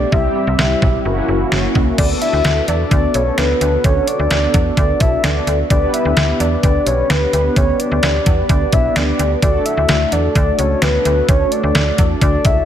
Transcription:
0.00 0.14 D5 medium
0.12 0.29 C2 loud
0.12 1.03 G3 medium
0.12 1.03 C4 medium
0.12 1.03 E4 medium
0.12 1.03 G4 medium
0.12 0.35 E5 loud
0.12 kick loud
0.35 1.24 E5 medium
0.47 0.55 C2 loud
0.59 0.75 C2 loud
0.59 snare loud
0.82 0.98 B1 loud
0.82 kick loud
1.05 1.22 F#1 loud
1.05 1.96 A#3 medium
1.05 1.97 C#4 medium
1.05 1.96 E4 medium
1.05 1.97 F#4 medium
1.28 1.45 F#1 loud
1.52 1.68 F#1 loud
1.52 snare loud
1.75 1.92 C#2 medium
1.75 kick medium
1.98 2.15 D2 loud
1.98 5.66 D4 medium
1.98 5.66 A4 medium
1.98 2.09 D5 loud
1.98 kick loud
1.98 closed hi-hat medium
1.98 crash medium
2.22 2.65 E5 loud
2.22 closed hi-hat medium
2.33 2.41 D2 medium
2.45 2.61 D2 loud
2.45 snare loud
2.45 closed hi-hat medium
2.68 2.84 E2 loud
2.68 2.90 D5 loud
2.68 closed hi-hat medium
2.91 3.08 D2 loud
2.91 3.16 D5 loud
2.91 kick medium
2.91 closed hi-hat medium
3.14 3.31 B1 medium
3.14 3.40 C#5 loud
3.14 closed hi-hat medium
3.38 3.54 D2 loud
3.38 3.61 B4 loud
3.38 snare loud
3.38 closed hi-hat medium
3.61 3.77 D2 loud
3.61 3.86 B4 medium
3.61 closed hi-hat medium
3.84 4.01 D2 loud
3.84 4.09 C#5 loud
3.84 kick loud
3.84 closed hi-hat medium
4.07 4.77 D5 loud
4.07 closed hi-hat medium
4.19 4.27 D2 loud
4.31 4.47 D2 loud
4.31 snare loud
4.31 closed hi-hat medium
4.54 4.70 E2 loud
4.54 kick medium
4.54 closed hi-hat medium
4.77 4.94 D2 loud
4.77 5.02 D5 loud
4.77 kick medium
4.77 closed hi-hat medium
5.00 5.17 B1 medium
5.00 5.25 E5 loud
5.00 kick loud
5.00 closed hi-hat medium
5.24 5.40 D2 loud
5.24 5.59 D5 loud
5.24 snare loud
5.24 closed hi-hat medium
5.47 5.63 D2 loud
5.47 closed hi-hat medium
5.70 5.87 D2 loud
5.70 9.38 B3 medium
5.70 9.38 D4 medium
5.70 9.38 G4 medium
5.70 9.38 B4 medium
5.70 5.95 D5 loud
5.70 kick loud
5.70 closed hi-hat medium
5.94 6.42 E5 loud
5.94 closed hi-hat medium
6.05 6.13 D2 loud
6.17 6.33 D2 loud
6.17 snare loud
6.17 closed hi-hat medium
6.40 6.56 E2 medium
6.40 6.63 D5 loud
6.40 closed hi-hat medium
6.63 6.80 D2 loud
6.63 6.88 D5 loud
6.63 kick medium
6.63 closed hi-hat medium
6.87 7.03 B1 medium
6.87 7.12 C#5 medium
6.87 closed hi-hat medium
7.10 7.26 D2 loud
7.10 7.33 B4 medium
7.10 snare loud
7.10 closed hi-hat medium
7.33 7.49 D2 loud
7.33 7.58 B4 medium
7.33 closed hi-hat medium
7.56 7.73 D2 loud
7.56 7.82 C#5 loud
7.56 kick loud
7.56 closed hi-hat medium
7.80 8.50 D5 loud
7.80 closed hi-hat medium
7.92 8.00 D2 loud
8.03 8.19 D2 loud
8.03 snare loud
8.03 closed hi-hat medium
8.26 8.43 E2 medium
8.26 kick loud
8.26 closed hi-hat medium
8.49 8.66 D2 loud
8.49 8.75 D5 loud
8.49 kick medium
8.49 closed hi-hat medium
8.72 8.89 B1 medium
8.72 8.98 E5 loud
8.72 kick loud
8.72 closed hi-hat medium
8.96 9.12 D2 loud
8.96 9.31 D5 loud
8.96 snare loud
8.96 closed hi-hat medium
9.19 9.36 D2 loud
9.19 closed hi-hat medium
9.42 9.59 D2 loud
9.42 12.65 A3 medium
9.42 12.65 D4 medium
9.42 12.65 F#4 medium
9.42 12.65 A4 medium
9.42 9.67 D5 loud
9.42 kick loud
9.42 closed hi-hat medium
9.66 10.14 E5 loud
9.66 closed hi-hat medium
9.77 9.86 D2 loud
9.89 10.05 D2 loud
9.89 snare loud
9.89 closed hi-hat medium
10.12 10.29 E2 medium
10.12 10.35 D5 medium
10.12 closed hi-hat medium
10.35 10.52 D2 loud
10.35 10.60 D5 loud
10.35 kick medium
10.35 closed hi-hat medium
10.59 10.75 C#2 medium
10.59 10.84 C#5 medium
10.59 closed hi-hat medium
10.82 10.98 D2 loud
10.82 11.05 B4 medium
10.82 snare loud
10.82 closed hi-hat medium
11.05 11.22 D2 loud
11.05 11.30 B4 medium
11.05 closed hi-hat medium
11.29 11.45 D2 loud
11.29 11.53 C#5 loud
11.29 kick loud
11.29 closed hi-hat medium
11.52 12.21 D5 loud
11.52 closed hi-hat medium
11.63 11.72 D2 medium
11.75 11.91 D2 loud
11.75 snare loud
11.75 closed hi-hat medium
11.98 12.15 E2 loud
11.98 kick loud
11.98 closed hi-hat medium
12.21 12.38 D2 loud
12.21 12.47 D5 loud
12.21 kick medium
12.21 closed hi-hat medium
12.45 12.61 C#2 medium
12.45 12.65 E5 loud
12.45 kick loud
12.45 closed hi-hat medium

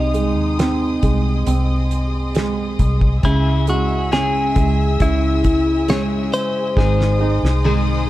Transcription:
0.00 0.37 C2 medium
0.00 3.19 C3 medium
0.00 2.31 D#4 medium
0.00 3.19 G#4 medium
0.00 3.20 D#5 medium
0.00 3.20 C6 medium
0.00 3.19 D#6 medium
0.14 1.02 G#3 soft
0.14 closed hi-hat soft
0.37 0.99 D#2 medium
0.59 1.45 C4 soft
0.59 snare medium
0.59 closed hi-hat medium
1.03 1.44 C2 medium
1.03 2.34 G#3 soft
1.03 kick medium
1.03 closed hi-hat medium
1.46 2.75 C2 medium
1.46 3.19 C4 soft
1.46 closed hi-hat medium
1.91 closed hi-hat soft
2.35 3.21 G#3 soft
2.35 snare medium
2.35 closed hi-hat medium
2.79 3.21 C2 medium
2.79 kick medium
2.79 closed hi-hat medium
3.01 kick medium
3.23 4.52 C#2 medium
3.23 3.67 C#3 medium
3.23 4.11 C#3 medium
3.23 3.68 G#3 medium
3.23 3.68 C#4 medium
3.23 3.68 E4 medium
3.23 3.65 E4 medium
3.23 8.10 G#4 medium
3.23 3.66 G#4 medium
3.23 6.73 E5 medium
3.23 6.73 G#5 medium
3.23 6.73 E6 medium
3.23 kick loud
3.23 closed hi-hat medium
3.67 4.54 G#3 soft
3.67 4.11 C#4 soft
3.67 4.12 E4 soft
3.67 4.13 F#4 medium
3.67 4.12 G#4 soft
3.67 closed hi-hat medium
4.11 4.56 C#3 medium
4.11 4.99 C#3 soft
4.11 4.56 G#3 medium
4.11 4.56 C#4 medium
4.11 4.55 E4 medium
4.11 5.03 G#4 medium
4.11 4.54 G#4 medium
4.11 snare medium
4.11 closed hi-hat medium
4.55 4.97 C#2 medium
4.55 5.87 G#3 soft
4.55 4.99 C#4 soft
4.55 5.00 E4 soft
4.55 5.00 G#4 medium
4.55 kick medium
4.55 closed hi-hat medium
4.99 6.29 C#2 medium
4.99 6.73 C#3 medium
4.99 5.44 G#3 medium
4.99 5.44 C#4 medium
4.99 5.44 E4 medium
4.99 5.92 E4 medium
4.99 5.42 G#4 medium
4.99 kick medium
4.99 closed hi-hat medium
5.44 5.88 C#4 soft
5.44 5.88 E4 soft
5.44 5.88 G#4 medium
5.44 kick medium
5.44 closed hi-hat medium
5.88 6.76 C#3 medium
5.88 6.74 G#3 soft
5.88 6.77 G#3 medium
5.88 6.77 C#4 medium
5.88 6.77 E4 medium
5.88 6.78 G#4 medium
5.88 6.02 C#5 medium
5.88 snare medium
5.88 closed hi-hat medium
6.33 8.10 C5 medium
6.33 closed hi-hat medium
6.76 7.39 G#1 medium
6.76 7.21 G#2 medium
6.76 7.21 D#3 medium
6.76 7.64 G#3 medium
6.76 7.21 G#3 medium
6.76 7.21 C4 medium
6.76 7.20 D#4 medium
6.76 7.19 G#4 medium
6.76 8.10 D#5 medium
6.76 8.10 C6 medium
6.76 8.10 D#6 medium
6.76 kick medium
6.76 snare soft
7.01 snare soft
7.20 7.64 G#3 soft
7.20 7.64 C4 soft
7.20 8.08 D#4 medium
7.20 7.65 D#4 soft
7.20 7.65 G#4 soft
7.43 8.09 C2 medium
7.43 snare soft
7.64 8.09 G#2 medium
7.64 8.09 D#3 medium
7.64 8.09 G#3 loud
7.64 8.10 G#3 soft
7.64 8.09 C4 medium
7.64 8.08 D#4 medium
7.64 8.07 G#4 medium
7.64 high tom medium

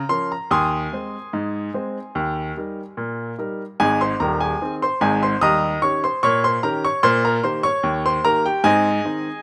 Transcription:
0.09 0.32 F3 medium
0.09 0.33 C#4 medium
0.09 0.33 A#4 medium
0.09 0.30 C6 loud
0.32 0.52 A#5 medium
0.51 0.86 D#2 loud
0.51 3.35 G#5 medium
0.51 3.35 C6 medium
0.51 2.81 D#6 loud
0.93 1.15 G#3 soft
0.93 1.16 C4 soft
0.93 1.16 C5 medium
1.33 1.68 G#2 medium
1.74 1.97 G#3 medium
1.74 1.97 C4 medium
1.74 1.97 C5 medium
2.15 2.50 D#2 loud
2.57 2.79 G3 medium
2.57 2.80 D#4 soft
2.57 2.80 A#4 soft
2.97 3.32 A#2 medium
3.38 3.61 G3 medium
3.38 3.61 D#4 soft
3.38 3.62 A#4 medium
3.80 4.12 G#1 loud
3.80 4.12 G#2 loud
3.80 3.99 G#4 medium
3.80 4.00 G#5 loud
4.01 4.20 C5 medium
4.01 4.21 C6 loud
4.20 4.53 D#1 medium
4.20 4.52 D#2 medium
4.20 4.40 A#4 medium
4.20 4.40 A#5 medium
4.41 4.60 G#4 medium
4.41 4.73 G#5 medium
4.61 4.84 D#3 medium
4.61 4.84 C4 medium
4.61 4.83 G#4 medium
4.82 5.01 C5 medium
4.82 5.02 C6 loud
5.01 5.34 G#1 loud
5.01 5.33 G#2 loud
5.01 5.20 G#4 medium
5.01 5.21 G#5 loud
5.23 5.41 C5 medium
5.23 5.42 C6 medium
5.41 5.76 D#2 loud
5.41 5.65 G3 medium
5.41 5.80 D#5 medium
5.41 5.80 A#5 loud
5.41 5.80 D#6 loud
5.82 6.04 D#3 medium
5.82 6.05 C#4 medium
5.82 6.05 G4 medium
5.82 6.01 C#5 medium
5.82 6.02 C#6 loud
6.04 6.22 C5 medium
6.04 6.23 C6 medium
6.23 6.57 A#2 loud
6.23 6.42 C#5 loud
6.23 6.43 C#6 loud
6.44 6.63 C5 medium
6.44 6.63 C6 loud
6.63 6.85 D#3 medium
6.63 6.85 C#4 medium
6.63 6.86 G4 medium
6.63 6.82 A#4 medium
6.63 6.83 A#5 loud
6.85 7.03 C#5 medium
6.85 7.04 C#6 loud
7.03 7.37 A#2 loud
7.03 7.23 C5 medium
7.03 7.23 C6 loud
7.25 7.43 A#4 medium
7.25 7.44 A#5 loud
7.43 7.66 D#3 medium
7.43 7.66 A#3 medium
7.43 7.66 G4 medium
7.43 7.63 C5 medium
7.43 7.64 C6 medium
7.63 8.02 C#5 medium
7.63 8.02 C#6 loud
7.83 8.18 D#2 loud
8.06 8.24 C5 medium
8.06 8.25 C6 loud
8.25 8.47 D#3 medium
8.25 8.47 A#3 medium
8.25 8.45 G4 medium
8.25 8.43 A#4 loud
8.25 8.44 A#5 loud
8.46 8.64 G4 medium
8.46 8.65 G5 loud
8.64 8.98 G#2 loud
8.64 8.88 C4 medium
8.64 9.42 G#4 medium
8.64 9.42 D#5 medium
8.64 9.42 G#5 loud
9.05 9.27 D#3 medium
9.05 9.27 C4 medium
9.05 9.28 D#4 medium

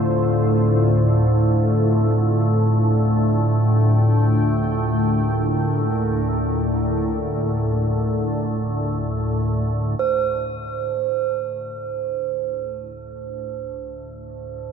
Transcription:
0.00 9.97 D2 medium
0.00 9.99 A2 medium
0.00 10.02 D3 medium
0.00 10.02 F4 medium
0.00 4.85 C5 medium
0.00 9.98 C5 medium
0.00 2.67 F5 medium
2.36 10.02 G5 medium
4.52 10.00 A#4 medium
9.98 14.72 D2 medium
9.98 14.72 A2 medium
9.98 14.72 C5 medium

